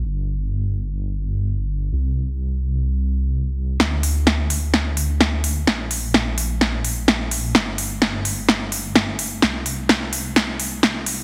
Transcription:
<<
  \new Staff \with { instrumentName = "Detuned saw bass" } { \clef bass \time 4/4 \key bes \lydian \tempo 4 = 128 g,,1 | c,1 | d,1 | bes,,1 |
g,,1 | c,1 | }
  \new DrumStaff \with { instrumentName = "Drums" } \drummode { \time 4/4 r4 r4 r4 r4 | r4 r4 r4 r4 | sn8 hho8 sn8 hho8 sn8 hho8 sn8 hho8 | sn8 hho8 sn8 hho8 sn8 hho8 sn8 hho8 |
sn8 hho8 sn8 hho8 sn8 hho8 sn8 hho8 | sn8 hho8 sn8 hho8 sn8 hho8 sn8 hho8 | }
>>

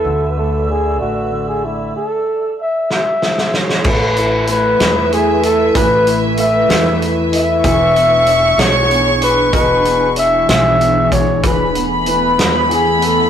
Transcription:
<<
  \new Staff \with { instrumentName = "Violin section" } { \time 6/8 \key a \major \tempo 4. = 63 r2. | r2. | e''2.~ | e''2. |
cis'''2.~ | cis'''2~ cis'''8 r8 | b''2. | }
  \new Staff \with { instrumentName = "Flugelhorn" } { \time 6/8 \key a \major a'8 a'8 gis'8 fis'8. gis'16 e'8 | a'4 e''8 e''4 cis''8 | b'4 b'4 gis'8 a'8 | b'4 e''4 r8 e''8~ |
e''4. cis''4 b'8 | b'4 e''8 e''4 cis''8 | b'8 r8 b'4 gis'8 a'8 | }
  \new Staff \with { instrumentName = "Ambient pad" } { \time 6/8 \key a \major << { <e'' e'''>2. | r2. | <e' b'>2.~ | <e' b'>2. |
<d' gis'>2.~ | <d' gis'>2. | <a b>2. | } \\ { d''2. | r2. | a2.~ | a2. |
e2.~ | e2.~ | e2. | } >> }
  \new Staff \with { instrumentName = "Grand piano" } { \time 6/8 \key a \major d8 a8 d8 a8 d8 a8 | r2. | a8 e'8 a8 e'8 a8 e'8 | e8 e'8 a8 e'8 a8 e'8 |
e8 b8 d'8 gis'8 b8 d'8 | b,8 b8 d'8 gis'8 b8 d'8 | e8 b8 e8 b8 e8 b8 | }
  \new Staff \with { instrumentName = "Upright bass" } { \clef bass \time 6/8 \key a \major d,4. a,,4. | r2. | a,,4. e,4. | a,,4. e,4. |
e,,4. b,,4. | e,,4. b,,4. | e,,4. e,4. | }
  \new DrumStaff \with { instrumentName = "Drums" } \drummode { \time 6/8 r4. r4. | r4. sn8 sn16 sn16 sn16 sn16 | <cymc bd>8 hh8 hh8 <hh sn>8 hh8 hh8 | <hh bd>8 hh8 hh8 <hh sn>8 hh8 hh8 |
<hh bd>8 hh8 hh8 <hh sn>8 hh8 hh8 | <hh bd>8 hh8 hh8 <hh sn>8 hh8 <hh bd>8 | <hh bd>8 hh8 hh8 <hh sn>8 hh8 hh8 | }
>>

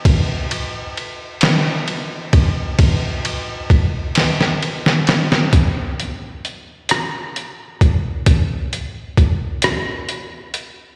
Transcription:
\new DrumStaff \with { instrumentName = "Drums" } \drummode { \time 6/8 \tempo 4. = 44 <bd cymr>8 cymr8 cymr8 <cymr sn>8 cymr8 <bd cymr>8 | <bd cymr>8 cymr8 <bd cymr>8 <cymr sn>16 sn16 cymr16 sn16 <cymr sn>16 sn16 | <hh bd>8 hh8 hh8 <hh ss>8 hh8 <hh bd>8 | <hh bd>8 hh8 <hh bd>8 <hh ss>8 hh8 hh8 | }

